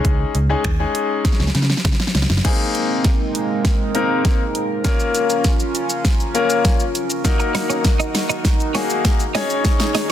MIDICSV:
0, 0, Header, 1, 7, 480
1, 0, Start_track
1, 0, Tempo, 600000
1, 38, Time_signature, 4, 2, 24, 8
1, 8095, End_track
2, 0, Start_track
2, 0, Title_t, "Analog synth pad"
2, 0, Program_c, 0, 89
2, 1958, Note_on_c, 0, 56, 77
2, 1958, Note_on_c, 0, 58, 68
2, 1958, Note_on_c, 0, 60, 69
2, 1958, Note_on_c, 0, 63, 69
2, 1958, Note_on_c, 0, 70, 82
2, 3859, Note_off_c, 0, 56, 0
2, 3859, Note_off_c, 0, 58, 0
2, 3859, Note_off_c, 0, 60, 0
2, 3859, Note_off_c, 0, 63, 0
2, 3876, Note_on_c, 0, 65, 68
2, 3877, Note_on_c, 0, 61, 72
2, 5766, Note_off_c, 0, 70, 0
2, 5778, Note_off_c, 0, 61, 0
2, 5778, Note_off_c, 0, 65, 0
2, 5796, Note_on_c, 0, 66, 71
2, 5797, Note_on_c, 0, 63, 79
2, 5798, Note_on_c, 0, 70, 84
2, 7460, Note_off_c, 0, 66, 0
2, 7461, Note_off_c, 0, 63, 0
2, 7461, Note_off_c, 0, 70, 0
2, 7478, Note_on_c, 0, 73, 84
2, 7479, Note_on_c, 0, 63, 79
2, 7479, Note_on_c, 0, 68, 71
2, 8095, Note_off_c, 0, 63, 0
2, 8095, Note_off_c, 0, 68, 0
2, 8095, Note_off_c, 0, 73, 0
2, 8095, End_track
3, 0, Start_track
3, 0, Title_t, "Clean electric guitar"
3, 0, Program_c, 1, 27
3, 6038, Note_on_c, 1, 63, 73
3, 6108, Note_off_c, 1, 63, 0
3, 6157, Note_on_c, 1, 61, 77
3, 6227, Note_off_c, 1, 61, 0
3, 6397, Note_on_c, 1, 63, 70
3, 6467, Note_off_c, 1, 63, 0
3, 6637, Note_on_c, 1, 63, 79
3, 6707, Note_off_c, 1, 63, 0
3, 6997, Note_on_c, 1, 61, 78
3, 7067, Note_off_c, 1, 61, 0
3, 7478, Note_on_c, 1, 63, 86
3, 7548, Note_off_c, 1, 63, 0
3, 7957, Note_on_c, 1, 63, 77
3, 8027, Note_off_c, 1, 63, 0
3, 8095, End_track
4, 0, Start_track
4, 0, Title_t, "Grand piano"
4, 0, Program_c, 2, 0
4, 0, Note_on_c, 2, 56, 88
4, 0, Note_on_c, 2, 61, 81
4, 0, Note_on_c, 2, 63, 80
4, 0, Note_on_c, 2, 68, 102
4, 277, Note_off_c, 2, 56, 0
4, 278, Note_off_c, 2, 61, 0
4, 279, Note_off_c, 2, 63, 0
4, 279, Note_off_c, 2, 68, 0
4, 397, Note_on_c, 2, 56, 92
4, 398, Note_on_c, 2, 61, 79
4, 399, Note_on_c, 2, 63, 82
4, 400, Note_on_c, 2, 68, 99
4, 522, Note_off_c, 2, 56, 0
4, 522, Note_off_c, 2, 61, 0
4, 523, Note_off_c, 2, 63, 0
4, 523, Note_off_c, 2, 68, 0
4, 637, Note_on_c, 2, 56, 89
4, 638, Note_on_c, 2, 61, 78
4, 639, Note_on_c, 2, 63, 80
4, 640, Note_on_c, 2, 68, 96
4, 1135, Note_off_c, 2, 56, 0
4, 1135, Note_off_c, 2, 61, 0
4, 1136, Note_off_c, 2, 63, 0
4, 1136, Note_off_c, 2, 68, 0
4, 1955, Note_on_c, 2, 58, 82
4, 1957, Note_on_c, 2, 60, 73
4, 1958, Note_on_c, 2, 63, 73
4, 1960, Note_on_c, 2, 68, 89
4, 2454, Note_off_c, 2, 58, 0
4, 2455, Note_off_c, 2, 60, 0
4, 2455, Note_off_c, 2, 63, 0
4, 2456, Note_off_c, 2, 68, 0
4, 3157, Note_on_c, 2, 58, 83
4, 3158, Note_on_c, 2, 60, 74
4, 3159, Note_on_c, 2, 63, 73
4, 3161, Note_on_c, 2, 70, 88
4, 3530, Note_off_c, 2, 58, 0
4, 3531, Note_off_c, 2, 60, 0
4, 3532, Note_off_c, 2, 63, 0
4, 3532, Note_off_c, 2, 70, 0
4, 3875, Note_on_c, 2, 58, 83
4, 3876, Note_on_c, 2, 61, 74
4, 3878, Note_on_c, 2, 65, 75
4, 3879, Note_on_c, 2, 70, 90
4, 4374, Note_off_c, 2, 58, 0
4, 4374, Note_off_c, 2, 61, 0
4, 4375, Note_off_c, 2, 65, 0
4, 4376, Note_off_c, 2, 70, 0
4, 5075, Note_on_c, 2, 58, 82
4, 5076, Note_on_c, 2, 61, 75
4, 5078, Note_on_c, 2, 65, 78
4, 5080, Note_on_c, 2, 70, 89
4, 5450, Note_off_c, 2, 58, 0
4, 5450, Note_off_c, 2, 61, 0
4, 5451, Note_off_c, 2, 65, 0
4, 5452, Note_off_c, 2, 70, 0
4, 5795, Note_on_c, 2, 58, 83
4, 5797, Note_on_c, 2, 63, 77
4, 5798, Note_on_c, 2, 66, 73
4, 5799, Note_on_c, 2, 70, 92
4, 6294, Note_off_c, 2, 58, 0
4, 6294, Note_off_c, 2, 63, 0
4, 6295, Note_off_c, 2, 66, 0
4, 6296, Note_off_c, 2, 70, 0
4, 6996, Note_on_c, 2, 58, 87
4, 6997, Note_on_c, 2, 63, 78
4, 6998, Note_on_c, 2, 66, 79
4, 6999, Note_on_c, 2, 68, 94
4, 7370, Note_off_c, 2, 58, 0
4, 7370, Note_off_c, 2, 63, 0
4, 7371, Note_off_c, 2, 66, 0
4, 7372, Note_off_c, 2, 68, 0
4, 7477, Note_on_c, 2, 61, 91
4, 7478, Note_on_c, 2, 63, 81
4, 7479, Note_on_c, 2, 68, 83
4, 7481, Note_on_c, 2, 73, 100
4, 8095, Note_off_c, 2, 61, 0
4, 8095, Note_off_c, 2, 63, 0
4, 8095, Note_off_c, 2, 68, 0
4, 8095, Note_off_c, 2, 73, 0
4, 8095, End_track
5, 0, Start_track
5, 0, Title_t, "Picked electric bass"
5, 0, Program_c, 3, 34
5, 38, Note_on_c, 3, 37, 107
5, 183, Note_off_c, 3, 37, 0
5, 279, Note_on_c, 3, 37, 93
5, 424, Note_off_c, 3, 37, 0
5, 517, Note_on_c, 3, 39, 94
5, 663, Note_off_c, 3, 39, 0
5, 1118, Note_on_c, 3, 37, 94
5, 1191, Note_off_c, 3, 37, 0
5, 1238, Note_on_c, 3, 49, 94
5, 1384, Note_off_c, 3, 49, 0
5, 1479, Note_on_c, 3, 49, 103
5, 1551, Note_off_c, 3, 49, 0
5, 1719, Note_on_c, 3, 37, 84
5, 1791, Note_off_c, 3, 37, 0
5, 1838, Note_on_c, 3, 30, 90
5, 1911, Note_off_c, 3, 30, 0
5, 8095, End_track
6, 0, Start_track
6, 0, Title_t, "Muted clean electric guitar strokes"
6, 5917, Note_on_c, 9, 29, 47
6, 5997, Note_off_c, 9, 29, 0
6, 6518, Note_on_c, 9, 29, 48
6, 6598, Note_off_c, 9, 29, 0
6, 7838, Note_on_c, 9, 29, 47
6, 7918, Note_off_c, 9, 29, 0
6, 8095, End_track
7, 0, Start_track
7, 0, Title_t, "Drums"
7, 38, Note_on_c, 9, 36, 119
7, 38, Note_on_c, 9, 42, 76
7, 118, Note_off_c, 9, 36, 0
7, 118, Note_off_c, 9, 42, 0
7, 277, Note_on_c, 9, 42, 54
7, 357, Note_off_c, 9, 42, 0
7, 515, Note_on_c, 9, 42, 68
7, 517, Note_on_c, 9, 26, 104
7, 517, Note_on_c, 9, 36, 101
7, 595, Note_off_c, 9, 42, 0
7, 597, Note_off_c, 9, 26, 0
7, 597, Note_off_c, 9, 36, 0
7, 759, Note_on_c, 9, 42, 65
7, 839, Note_off_c, 9, 42, 0
7, 998, Note_on_c, 9, 36, 106
7, 998, Note_on_c, 9, 38, 53
7, 999, Note_on_c, 9, 42, 76
7, 1058, Note_off_c, 9, 38, 0
7, 1058, Note_on_c, 9, 38, 48
7, 1078, Note_off_c, 9, 36, 0
7, 1079, Note_off_c, 9, 42, 0
7, 1119, Note_off_c, 9, 38, 0
7, 1119, Note_on_c, 9, 38, 58
7, 1178, Note_off_c, 9, 38, 0
7, 1178, Note_on_c, 9, 38, 51
7, 1238, Note_off_c, 9, 38, 0
7, 1238, Note_on_c, 9, 38, 62
7, 1238, Note_on_c, 9, 42, 52
7, 1298, Note_off_c, 9, 38, 0
7, 1298, Note_on_c, 9, 38, 57
7, 1318, Note_off_c, 9, 42, 0
7, 1358, Note_off_c, 9, 38, 0
7, 1358, Note_on_c, 9, 38, 77
7, 1418, Note_off_c, 9, 38, 0
7, 1418, Note_on_c, 9, 38, 65
7, 1478, Note_off_c, 9, 38, 0
7, 1478, Note_on_c, 9, 38, 80
7, 1479, Note_on_c, 9, 36, 118
7, 1479, Note_on_c, 9, 42, 73
7, 1538, Note_off_c, 9, 38, 0
7, 1538, Note_on_c, 9, 38, 69
7, 1559, Note_off_c, 9, 36, 0
7, 1559, Note_off_c, 9, 42, 0
7, 1598, Note_off_c, 9, 38, 0
7, 1598, Note_on_c, 9, 38, 88
7, 1658, Note_off_c, 9, 38, 0
7, 1658, Note_on_c, 9, 38, 74
7, 1718, Note_off_c, 9, 38, 0
7, 1718, Note_on_c, 9, 38, 93
7, 1720, Note_on_c, 9, 42, 51
7, 1778, Note_off_c, 9, 38, 0
7, 1778, Note_on_c, 9, 38, 85
7, 1800, Note_off_c, 9, 42, 0
7, 1838, Note_off_c, 9, 38, 0
7, 1838, Note_on_c, 9, 38, 101
7, 1898, Note_off_c, 9, 38, 0
7, 1898, Note_on_c, 9, 38, 86
7, 1958, Note_off_c, 9, 38, 0
7, 1958, Note_on_c, 9, 36, 113
7, 1958, Note_on_c, 9, 38, 52
7, 1958, Note_on_c, 9, 42, 78
7, 1958, Note_on_c, 9, 49, 91
7, 2038, Note_off_c, 9, 36, 0
7, 2038, Note_off_c, 9, 38, 0
7, 2038, Note_off_c, 9, 42, 0
7, 2038, Note_off_c, 9, 49, 0
7, 2198, Note_on_c, 9, 42, 53
7, 2278, Note_off_c, 9, 42, 0
7, 2436, Note_on_c, 9, 42, 65
7, 2437, Note_on_c, 9, 36, 107
7, 2438, Note_on_c, 9, 38, 54
7, 2516, Note_off_c, 9, 42, 0
7, 2517, Note_off_c, 9, 36, 0
7, 2518, Note_off_c, 9, 38, 0
7, 2679, Note_on_c, 9, 42, 63
7, 2759, Note_off_c, 9, 42, 0
7, 2917, Note_on_c, 9, 38, 59
7, 2918, Note_on_c, 9, 36, 103
7, 2918, Note_on_c, 9, 42, 80
7, 2997, Note_off_c, 9, 38, 0
7, 2998, Note_off_c, 9, 36, 0
7, 2998, Note_off_c, 9, 42, 0
7, 3158, Note_on_c, 9, 42, 52
7, 3238, Note_off_c, 9, 42, 0
7, 3398, Note_on_c, 9, 38, 64
7, 3399, Note_on_c, 9, 36, 125
7, 3399, Note_on_c, 9, 42, 71
7, 3478, Note_off_c, 9, 38, 0
7, 3479, Note_off_c, 9, 36, 0
7, 3479, Note_off_c, 9, 42, 0
7, 3639, Note_on_c, 9, 42, 53
7, 3719, Note_off_c, 9, 42, 0
7, 3877, Note_on_c, 9, 36, 115
7, 3877, Note_on_c, 9, 38, 69
7, 3877, Note_on_c, 9, 42, 80
7, 3877, Note_on_c, 9, 82, 81
7, 3957, Note_off_c, 9, 36, 0
7, 3957, Note_off_c, 9, 38, 0
7, 3957, Note_off_c, 9, 42, 0
7, 3957, Note_off_c, 9, 82, 0
7, 3996, Note_on_c, 9, 82, 52
7, 4076, Note_off_c, 9, 82, 0
7, 4117, Note_on_c, 9, 42, 55
7, 4117, Note_on_c, 9, 82, 53
7, 4197, Note_off_c, 9, 42, 0
7, 4197, Note_off_c, 9, 82, 0
7, 4238, Note_on_c, 9, 82, 77
7, 4318, Note_off_c, 9, 82, 0
7, 4355, Note_on_c, 9, 42, 70
7, 4355, Note_on_c, 9, 82, 70
7, 4357, Note_on_c, 9, 36, 109
7, 4357, Note_on_c, 9, 38, 70
7, 4435, Note_off_c, 9, 42, 0
7, 4435, Note_off_c, 9, 82, 0
7, 4437, Note_off_c, 9, 36, 0
7, 4437, Note_off_c, 9, 38, 0
7, 4477, Note_on_c, 9, 82, 60
7, 4557, Note_off_c, 9, 82, 0
7, 4598, Note_on_c, 9, 42, 66
7, 4598, Note_on_c, 9, 82, 66
7, 4678, Note_off_c, 9, 42, 0
7, 4678, Note_off_c, 9, 82, 0
7, 4716, Note_on_c, 9, 82, 75
7, 4796, Note_off_c, 9, 82, 0
7, 4838, Note_on_c, 9, 36, 104
7, 4838, Note_on_c, 9, 38, 77
7, 4839, Note_on_c, 9, 42, 79
7, 4839, Note_on_c, 9, 82, 82
7, 4918, Note_off_c, 9, 36, 0
7, 4918, Note_off_c, 9, 38, 0
7, 4919, Note_off_c, 9, 42, 0
7, 4919, Note_off_c, 9, 82, 0
7, 4960, Note_on_c, 9, 82, 46
7, 5040, Note_off_c, 9, 82, 0
7, 5078, Note_on_c, 9, 42, 53
7, 5078, Note_on_c, 9, 82, 52
7, 5158, Note_off_c, 9, 42, 0
7, 5158, Note_off_c, 9, 82, 0
7, 5198, Note_on_c, 9, 82, 82
7, 5278, Note_off_c, 9, 82, 0
7, 5317, Note_on_c, 9, 38, 80
7, 5318, Note_on_c, 9, 36, 123
7, 5319, Note_on_c, 9, 42, 74
7, 5319, Note_on_c, 9, 82, 71
7, 5397, Note_off_c, 9, 38, 0
7, 5398, Note_off_c, 9, 36, 0
7, 5399, Note_off_c, 9, 42, 0
7, 5399, Note_off_c, 9, 82, 0
7, 5437, Note_on_c, 9, 82, 53
7, 5517, Note_off_c, 9, 82, 0
7, 5560, Note_on_c, 9, 42, 55
7, 5560, Note_on_c, 9, 82, 53
7, 5640, Note_off_c, 9, 42, 0
7, 5640, Note_off_c, 9, 82, 0
7, 5678, Note_on_c, 9, 82, 71
7, 5758, Note_off_c, 9, 82, 0
7, 5797, Note_on_c, 9, 36, 121
7, 5798, Note_on_c, 9, 38, 85
7, 5798, Note_on_c, 9, 42, 79
7, 5798, Note_on_c, 9, 82, 82
7, 5877, Note_off_c, 9, 36, 0
7, 5878, Note_off_c, 9, 38, 0
7, 5878, Note_off_c, 9, 42, 0
7, 5878, Note_off_c, 9, 82, 0
7, 5918, Note_on_c, 9, 82, 54
7, 5998, Note_off_c, 9, 82, 0
7, 6038, Note_on_c, 9, 38, 85
7, 6038, Note_on_c, 9, 46, 76
7, 6038, Note_on_c, 9, 82, 54
7, 6118, Note_off_c, 9, 38, 0
7, 6118, Note_off_c, 9, 46, 0
7, 6118, Note_off_c, 9, 82, 0
7, 6160, Note_on_c, 9, 82, 76
7, 6240, Note_off_c, 9, 82, 0
7, 6276, Note_on_c, 9, 42, 69
7, 6276, Note_on_c, 9, 82, 72
7, 6277, Note_on_c, 9, 36, 106
7, 6278, Note_on_c, 9, 38, 85
7, 6356, Note_off_c, 9, 42, 0
7, 6356, Note_off_c, 9, 82, 0
7, 6357, Note_off_c, 9, 36, 0
7, 6358, Note_off_c, 9, 38, 0
7, 6398, Note_on_c, 9, 82, 64
7, 6478, Note_off_c, 9, 82, 0
7, 6518, Note_on_c, 9, 38, 92
7, 6519, Note_on_c, 9, 46, 96
7, 6519, Note_on_c, 9, 82, 65
7, 6598, Note_off_c, 9, 38, 0
7, 6599, Note_off_c, 9, 46, 0
7, 6599, Note_off_c, 9, 82, 0
7, 6636, Note_on_c, 9, 82, 69
7, 6716, Note_off_c, 9, 82, 0
7, 6758, Note_on_c, 9, 36, 107
7, 6758, Note_on_c, 9, 38, 91
7, 6759, Note_on_c, 9, 42, 83
7, 6759, Note_on_c, 9, 82, 81
7, 6838, Note_off_c, 9, 36, 0
7, 6838, Note_off_c, 9, 38, 0
7, 6839, Note_off_c, 9, 42, 0
7, 6839, Note_off_c, 9, 82, 0
7, 6880, Note_on_c, 9, 82, 49
7, 6960, Note_off_c, 9, 82, 0
7, 6998, Note_on_c, 9, 38, 92
7, 6998, Note_on_c, 9, 46, 74
7, 6998, Note_on_c, 9, 82, 53
7, 7078, Note_off_c, 9, 38, 0
7, 7078, Note_off_c, 9, 46, 0
7, 7078, Note_off_c, 9, 82, 0
7, 7118, Note_on_c, 9, 82, 89
7, 7198, Note_off_c, 9, 82, 0
7, 7238, Note_on_c, 9, 38, 103
7, 7239, Note_on_c, 9, 36, 127
7, 7239, Note_on_c, 9, 42, 74
7, 7239, Note_on_c, 9, 82, 77
7, 7318, Note_off_c, 9, 38, 0
7, 7319, Note_off_c, 9, 36, 0
7, 7319, Note_off_c, 9, 42, 0
7, 7319, Note_off_c, 9, 82, 0
7, 7357, Note_on_c, 9, 82, 54
7, 7437, Note_off_c, 9, 82, 0
7, 7478, Note_on_c, 9, 38, 100
7, 7480, Note_on_c, 9, 46, 80
7, 7480, Note_on_c, 9, 82, 57
7, 7558, Note_off_c, 9, 38, 0
7, 7560, Note_off_c, 9, 46, 0
7, 7560, Note_off_c, 9, 82, 0
7, 7599, Note_on_c, 9, 82, 76
7, 7679, Note_off_c, 9, 82, 0
7, 7717, Note_on_c, 9, 36, 125
7, 7718, Note_on_c, 9, 38, 99
7, 7718, Note_on_c, 9, 42, 84
7, 7718, Note_on_c, 9, 82, 81
7, 7797, Note_off_c, 9, 36, 0
7, 7798, Note_off_c, 9, 38, 0
7, 7798, Note_off_c, 9, 42, 0
7, 7798, Note_off_c, 9, 82, 0
7, 7837, Note_on_c, 9, 82, 55
7, 7838, Note_on_c, 9, 38, 104
7, 7917, Note_off_c, 9, 82, 0
7, 7918, Note_off_c, 9, 38, 0
7, 7957, Note_on_c, 9, 46, 80
7, 7957, Note_on_c, 9, 82, 55
7, 7958, Note_on_c, 9, 38, 105
7, 8037, Note_off_c, 9, 46, 0
7, 8037, Note_off_c, 9, 82, 0
7, 8038, Note_off_c, 9, 38, 0
7, 8095, End_track
0, 0, End_of_file